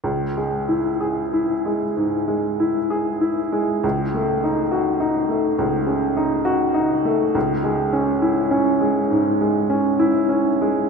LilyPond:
\new Staff \with { instrumentName = "Upright piano" } { \time 4/4 \key cis \minor \tempo 4 = 67 \tuplet 3/2 { cis,8 gis8 e'8 gis'8 e'8 gis8 gis,8 gis8 e'8 gis'8 e'8 gis8 } | \tuplet 3/2 { cis,8 a8 dis'8 fis'8 dis'8 a8 cis,8 cis8 dis'8 fis'8 dis'8 a8 } | \tuplet 3/2 { cis,8 gis8 cis'8 e'8 cis'8 gis8 gis,8 gis8 cis'8 e'8 cis'8 gis8 } | }